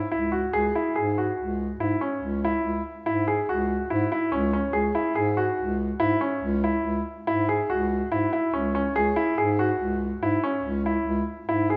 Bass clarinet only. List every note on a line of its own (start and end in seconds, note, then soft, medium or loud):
0.12 0.46 C#2 medium
0.54 0.71 C#2 medium
0.96 1.30 G#2 medium
1.38 1.72 C#2 medium
1.79 1.97 G#2 medium
2.22 2.56 C#2 medium
2.64 2.81 C#2 medium
3.06 3.40 G#2 medium
3.48 3.82 C#2 medium
3.91 4.08 G#2 medium
4.32 4.66 C#2 medium
4.74 4.91 C#2 medium
5.16 5.50 G#2 medium
5.59 5.93 C#2 medium
5.99 6.17 G#2 medium
6.42 6.76 C#2 loud
6.84 7.02 C#2 medium
7.27 7.61 G#2 medium
7.69 8.03 C#2 medium
8.11 8.28 G#2 medium
8.53 8.87 C#2 medium
8.95 9.12 C#2 medium
9.37 9.71 G#2 medium
9.79 10.14 C#2 medium
10.21 10.39 G#2 medium
10.63 10.98 C#2 medium
11.06 11.23 C#2 loud
11.47 11.77 G#2 medium